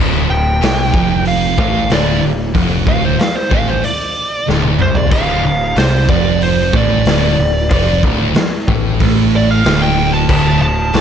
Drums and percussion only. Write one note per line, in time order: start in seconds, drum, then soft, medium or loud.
0.62 snare loud
0.62 open hi-hat medium
0.94 kick loud
1.25 open hi-hat medium
1.58 kick loud
1.90 snare loud
1.90 open hi-hat medium
2.55 kick loud
2.55 open hi-hat medium
2.87 kick loud
3.19 snare loud
3.19 open hi-hat medium
3.51 kick loud
3.84 open hi-hat medium
4.49 snare medium
4.62 high tom medium
4.79 mid tom medium
4.95 floor tom loud
5.11 kick loud
5.11 crash loud
5.76 snare loud
5.76 open hi-hat medium
6.09 kick loud
6.41 open hi-hat medium
6.73 kick loud
7.05 snare loud
7.05 open hi-hat medium
7.71 kick loud
7.71 open hi-hat medium
8.03 kick loud
8.34 snare loud
8.34 open hi-hat medium
8.68 kick loud
9.00 kick loud
9.00 open hi-hat medium
9.65 snare loud
9.65 open hi-hat medium
10.29 kick loud
10.29 crash loud
10.93 snare loud
10.93 open hi-hat medium